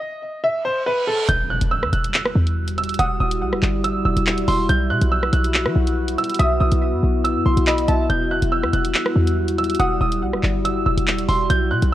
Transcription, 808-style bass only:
0, 0, Header, 1, 2, 480
1, 0, Start_track
1, 0, Key_signature, 1, "minor"
1, 0, Tempo, 425532
1, 1453, Time_signature, 4, 2, 24, 8
1, 13471, End_track
2, 0, Start_track
2, 0, Title_t, "808-style bass"
2, 0, Program_c, 0, 38
2, 1453, Note_on_c, 0, 28, 111
2, 1805, Note_off_c, 0, 28, 0
2, 1820, Note_on_c, 0, 28, 110
2, 2060, Note_on_c, 0, 40, 100
2, 2077, Note_off_c, 0, 28, 0
2, 2167, Note_off_c, 0, 40, 0
2, 2173, Note_on_c, 0, 28, 102
2, 2403, Note_off_c, 0, 28, 0
2, 2653, Note_on_c, 0, 40, 104
2, 3344, Note_off_c, 0, 40, 0
2, 3372, Note_on_c, 0, 28, 112
2, 3603, Note_off_c, 0, 28, 0
2, 3613, Note_on_c, 0, 27, 111
2, 3853, Note_on_c, 0, 35, 99
2, 3870, Note_off_c, 0, 27, 0
2, 3980, Note_on_c, 0, 27, 102
2, 3997, Note_off_c, 0, 35, 0
2, 4087, Note_off_c, 0, 27, 0
2, 4092, Note_on_c, 0, 31, 105
2, 4553, Note_off_c, 0, 31, 0
2, 4572, Note_on_c, 0, 28, 103
2, 4694, Note_off_c, 0, 28, 0
2, 4700, Note_on_c, 0, 28, 105
2, 5038, Note_off_c, 0, 28, 0
2, 5052, Note_on_c, 0, 28, 103
2, 5283, Note_off_c, 0, 28, 0
2, 5293, Note_on_c, 0, 35, 110
2, 5532, Note_on_c, 0, 47, 103
2, 5549, Note_off_c, 0, 35, 0
2, 5653, Note_off_c, 0, 47, 0
2, 5659, Note_on_c, 0, 35, 104
2, 5998, Note_off_c, 0, 35, 0
2, 6012, Note_on_c, 0, 35, 107
2, 6380, Note_on_c, 0, 54, 103
2, 6397, Note_off_c, 0, 35, 0
2, 6487, Note_off_c, 0, 54, 0
2, 6493, Note_on_c, 0, 35, 110
2, 6954, Note_off_c, 0, 35, 0
2, 7212, Note_on_c, 0, 35, 117
2, 7443, Note_off_c, 0, 35, 0
2, 7453, Note_on_c, 0, 35, 108
2, 7575, Note_off_c, 0, 35, 0
2, 7580, Note_on_c, 0, 35, 110
2, 7820, Note_on_c, 0, 42, 97
2, 7836, Note_off_c, 0, 35, 0
2, 7927, Note_off_c, 0, 42, 0
2, 7932, Note_on_c, 0, 35, 107
2, 8299, Note_on_c, 0, 42, 100
2, 8316, Note_off_c, 0, 35, 0
2, 8407, Note_off_c, 0, 42, 0
2, 8412, Note_on_c, 0, 35, 104
2, 8534, Note_off_c, 0, 35, 0
2, 8539, Note_on_c, 0, 35, 107
2, 8878, Note_off_c, 0, 35, 0
2, 8892, Note_on_c, 0, 35, 103
2, 9123, Note_off_c, 0, 35, 0
2, 9132, Note_on_c, 0, 28, 111
2, 9485, Note_off_c, 0, 28, 0
2, 9499, Note_on_c, 0, 28, 114
2, 9739, Note_on_c, 0, 40, 98
2, 9756, Note_off_c, 0, 28, 0
2, 9847, Note_off_c, 0, 40, 0
2, 9852, Note_on_c, 0, 28, 106
2, 10082, Note_off_c, 0, 28, 0
2, 10331, Note_on_c, 0, 40, 109
2, 11023, Note_off_c, 0, 40, 0
2, 11052, Note_on_c, 0, 28, 115
2, 11282, Note_off_c, 0, 28, 0
2, 11292, Note_on_c, 0, 27, 114
2, 11532, Note_on_c, 0, 35, 100
2, 11549, Note_off_c, 0, 27, 0
2, 11659, Note_on_c, 0, 27, 97
2, 11676, Note_off_c, 0, 35, 0
2, 11767, Note_off_c, 0, 27, 0
2, 11772, Note_on_c, 0, 31, 102
2, 12233, Note_off_c, 0, 31, 0
2, 12252, Note_on_c, 0, 28, 105
2, 12374, Note_off_c, 0, 28, 0
2, 12379, Note_on_c, 0, 28, 101
2, 12718, Note_off_c, 0, 28, 0
2, 12732, Note_on_c, 0, 28, 106
2, 12962, Note_off_c, 0, 28, 0
2, 12972, Note_on_c, 0, 35, 110
2, 13212, Note_on_c, 0, 47, 106
2, 13229, Note_off_c, 0, 35, 0
2, 13333, Note_off_c, 0, 47, 0
2, 13339, Note_on_c, 0, 35, 106
2, 13471, Note_off_c, 0, 35, 0
2, 13471, End_track
0, 0, End_of_file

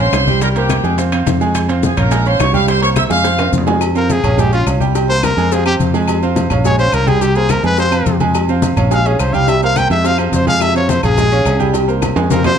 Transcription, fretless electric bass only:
0, 0, Header, 1, 2, 480
1, 0, Start_track
1, 0, Key_signature, -4, "minor"
1, 0, Tempo, 283152
1, 704, Time_signature, 4, 2, 24, 8
1, 21336, End_track
2, 0, Start_track
2, 0, Title_t, "Fretless electric bass"
2, 0, Program_c, 0, 35
2, 0, Note_on_c, 0, 34, 103
2, 172, Note_off_c, 0, 34, 0
2, 211, Note_on_c, 0, 36, 95
2, 1328, Note_off_c, 0, 36, 0
2, 1415, Note_on_c, 0, 41, 92
2, 2091, Note_off_c, 0, 41, 0
2, 2141, Note_on_c, 0, 41, 97
2, 3254, Note_off_c, 0, 41, 0
2, 3344, Note_on_c, 0, 34, 89
2, 4016, Note_off_c, 0, 34, 0
2, 4060, Note_on_c, 0, 36, 90
2, 5173, Note_off_c, 0, 36, 0
2, 5255, Note_on_c, 0, 41, 85
2, 5932, Note_off_c, 0, 41, 0
2, 5973, Note_on_c, 0, 41, 96
2, 7090, Note_off_c, 0, 41, 0
2, 7179, Note_on_c, 0, 34, 89
2, 7854, Note_off_c, 0, 34, 0
2, 7906, Note_on_c, 0, 36, 92
2, 9016, Note_off_c, 0, 36, 0
2, 9102, Note_on_c, 0, 41, 94
2, 9775, Note_off_c, 0, 41, 0
2, 9823, Note_on_c, 0, 41, 96
2, 10934, Note_off_c, 0, 41, 0
2, 11026, Note_on_c, 0, 34, 102
2, 11697, Note_off_c, 0, 34, 0
2, 11741, Note_on_c, 0, 36, 96
2, 12852, Note_off_c, 0, 36, 0
2, 12940, Note_on_c, 0, 41, 94
2, 13613, Note_off_c, 0, 41, 0
2, 13662, Note_on_c, 0, 41, 99
2, 14772, Note_off_c, 0, 41, 0
2, 14861, Note_on_c, 0, 34, 100
2, 15533, Note_off_c, 0, 34, 0
2, 15585, Note_on_c, 0, 36, 89
2, 16692, Note_off_c, 0, 36, 0
2, 16779, Note_on_c, 0, 41, 96
2, 17451, Note_off_c, 0, 41, 0
2, 17493, Note_on_c, 0, 41, 94
2, 18605, Note_off_c, 0, 41, 0
2, 18700, Note_on_c, 0, 34, 92
2, 19370, Note_off_c, 0, 34, 0
2, 19416, Note_on_c, 0, 36, 98
2, 20525, Note_off_c, 0, 36, 0
2, 20612, Note_on_c, 0, 41, 92
2, 21284, Note_off_c, 0, 41, 0
2, 21336, End_track
0, 0, End_of_file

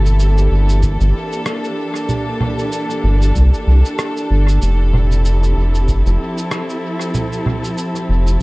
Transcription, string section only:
0, 0, Header, 1, 2, 480
1, 0, Start_track
1, 0, Tempo, 631579
1, 1589, Time_signature, 4, 2, 24, 8
1, 6402, End_track
2, 0, Start_track
2, 0, Title_t, "String section"
2, 0, Program_c, 0, 48
2, 0, Note_on_c, 0, 52, 60
2, 0, Note_on_c, 0, 58, 64
2, 0, Note_on_c, 0, 60, 63
2, 0, Note_on_c, 0, 64, 84
2, 0, Note_on_c, 0, 67, 66
2, 0, Note_on_c, 0, 69, 84
2, 93, Note_on_c, 0, 62, 82
2, 1218, Note_off_c, 0, 60, 0
2, 1218, Note_off_c, 0, 64, 0
2, 3508, Note_off_c, 0, 52, 0
2, 3508, Note_off_c, 0, 58, 0
2, 3514, Note_on_c, 0, 53, 77
2, 3650, Note_on_c, 0, 64, 73
2, 3714, Note_on_c, 0, 60, 70
2, 4983, Note_off_c, 0, 62, 0
2, 6402, Note_off_c, 0, 53, 0
2, 6402, Note_off_c, 0, 60, 0
2, 6402, Note_off_c, 0, 64, 0
2, 6402, Note_off_c, 0, 67, 0
2, 6402, Note_off_c, 0, 69, 0
2, 6402, End_track
0, 0, End_of_file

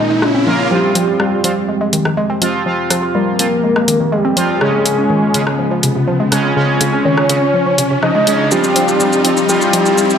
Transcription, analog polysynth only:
0, 0, Header, 1, 2, 480
1, 0, Start_track
1, 0, Key_signature, -4, "minor"
1, 0, Tempo, 487805
1, 699, Time_signature, 4, 2, 24, 8
1, 10018, End_track
2, 0, Start_track
2, 0, Title_t, "Analog polysynth"
2, 0, Program_c, 0, 90
2, 458, Note_on_c, 0, 58, 99
2, 458, Note_on_c, 0, 65, 93
2, 458, Note_on_c, 0, 70, 111
2, 670, Note_off_c, 0, 58, 0
2, 670, Note_off_c, 0, 65, 0
2, 670, Note_off_c, 0, 70, 0
2, 698, Note_on_c, 0, 53, 91
2, 698, Note_on_c, 0, 60, 84
2, 698, Note_on_c, 0, 65, 102
2, 1390, Note_off_c, 0, 53, 0
2, 1390, Note_off_c, 0, 60, 0
2, 1390, Note_off_c, 0, 65, 0
2, 1418, Note_on_c, 0, 53, 90
2, 1418, Note_on_c, 0, 60, 89
2, 1418, Note_on_c, 0, 65, 99
2, 1493, Note_off_c, 0, 53, 0
2, 1493, Note_off_c, 0, 60, 0
2, 1493, Note_off_c, 0, 65, 0
2, 2378, Note_on_c, 0, 53, 99
2, 2378, Note_on_c, 0, 60, 92
2, 2378, Note_on_c, 0, 65, 109
2, 2590, Note_off_c, 0, 53, 0
2, 2590, Note_off_c, 0, 60, 0
2, 2590, Note_off_c, 0, 65, 0
2, 2618, Note_on_c, 0, 53, 90
2, 2618, Note_on_c, 0, 60, 83
2, 2618, Note_on_c, 0, 65, 104
2, 3310, Note_off_c, 0, 53, 0
2, 3310, Note_off_c, 0, 60, 0
2, 3310, Note_off_c, 0, 65, 0
2, 3338, Note_on_c, 0, 53, 93
2, 3338, Note_on_c, 0, 60, 83
2, 3338, Note_on_c, 0, 65, 104
2, 3413, Note_off_c, 0, 53, 0
2, 3413, Note_off_c, 0, 60, 0
2, 3413, Note_off_c, 0, 65, 0
2, 4298, Note_on_c, 0, 53, 101
2, 4298, Note_on_c, 0, 60, 94
2, 4298, Note_on_c, 0, 65, 112
2, 4510, Note_off_c, 0, 53, 0
2, 4510, Note_off_c, 0, 60, 0
2, 4510, Note_off_c, 0, 65, 0
2, 4538, Note_on_c, 0, 49, 91
2, 4538, Note_on_c, 0, 56, 88
2, 4538, Note_on_c, 0, 61, 103
2, 5230, Note_off_c, 0, 49, 0
2, 5230, Note_off_c, 0, 56, 0
2, 5230, Note_off_c, 0, 61, 0
2, 5258, Note_on_c, 0, 49, 96
2, 5258, Note_on_c, 0, 56, 90
2, 5258, Note_on_c, 0, 61, 102
2, 5333, Note_off_c, 0, 49, 0
2, 5333, Note_off_c, 0, 56, 0
2, 5333, Note_off_c, 0, 61, 0
2, 6218, Note_on_c, 0, 49, 103
2, 6218, Note_on_c, 0, 56, 94
2, 6218, Note_on_c, 0, 61, 109
2, 6430, Note_off_c, 0, 49, 0
2, 6430, Note_off_c, 0, 56, 0
2, 6430, Note_off_c, 0, 61, 0
2, 6458, Note_on_c, 0, 49, 93
2, 6458, Note_on_c, 0, 56, 86
2, 6458, Note_on_c, 0, 61, 106
2, 7150, Note_off_c, 0, 49, 0
2, 7150, Note_off_c, 0, 56, 0
2, 7150, Note_off_c, 0, 61, 0
2, 7178, Note_on_c, 0, 49, 96
2, 7178, Note_on_c, 0, 56, 85
2, 7178, Note_on_c, 0, 61, 101
2, 7253, Note_off_c, 0, 49, 0
2, 7253, Note_off_c, 0, 56, 0
2, 7253, Note_off_c, 0, 61, 0
2, 8138, Note_on_c, 0, 49, 101
2, 8138, Note_on_c, 0, 56, 91
2, 8138, Note_on_c, 0, 61, 108
2, 8350, Note_off_c, 0, 49, 0
2, 8350, Note_off_c, 0, 56, 0
2, 8350, Note_off_c, 0, 61, 0
2, 8378, Note_on_c, 0, 53, 88
2, 8379, Note_on_c, 0, 60, 78
2, 8379, Note_on_c, 0, 65, 98
2, 9070, Note_off_c, 0, 53, 0
2, 9070, Note_off_c, 0, 60, 0
2, 9070, Note_off_c, 0, 65, 0
2, 9098, Note_on_c, 0, 53, 88
2, 9098, Note_on_c, 0, 60, 76
2, 9098, Note_on_c, 0, 65, 94
2, 9173, Note_off_c, 0, 53, 0
2, 9173, Note_off_c, 0, 60, 0
2, 9173, Note_off_c, 0, 65, 0
2, 9338, Note_on_c, 0, 53, 89
2, 9338, Note_on_c, 0, 60, 79
2, 9338, Note_on_c, 0, 65, 98
2, 10018, Note_off_c, 0, 53, 0
2, 10018, Note_off_c, 0, 60, 0
2, 10018, Note_off_c, 0, 65, 0
2, 10018, End_track
0, 0, End_of_file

